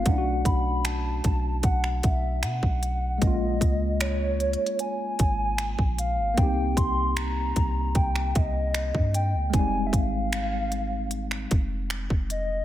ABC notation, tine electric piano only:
X:1
M:4/4
L:1/8
Q:1/4=76
K:Cphr
V:1 name="Tine electric piano"
[=A,D=D=E^F]8 | [A,B,DF]8 | [B,CEG]8 | [G,A,CE]8 |]